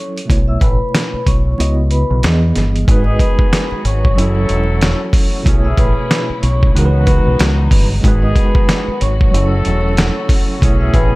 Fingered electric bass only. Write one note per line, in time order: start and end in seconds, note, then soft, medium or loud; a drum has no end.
0.30 0.57 B1 loud
0.62 0.78 A1 medium
1.13 muted fingered electric bass stroke soft
1.27 1.54 B1 medium
1.59 2.03 C#2 loud
2.10 2.22 B1 medium
2.24 2.51 E2 loud
2.56 2.84 G1 medium
2.88 3.16 G#1 loud
3.72 muted fingered electric bass stroke soft
3.85 4.12 G#1 medium
4.17 4.45 F#1 loud
4.50 4.93 E1 medium
5.46 5.74 B1 loud
5.78 5.94 A1 medium
6.30 muted fingered electric bass stroke soft
6.43 6.70 B1 medium
6.75 7.19 C#2 loud
7.26 7.38 B1 medium
7.40 7.67 C#2 loud
7.71 7.99 G1 loud
8.04 8.32 G#1 loud
8.88 muted fingered electric bass stroke soft
9.02 9.29 G#1 loud
9.34 9.61 F#1 loud
9.66 10.09 E1 medium
10.62 10.90 B1 medium
10.94 11.10 A1 loud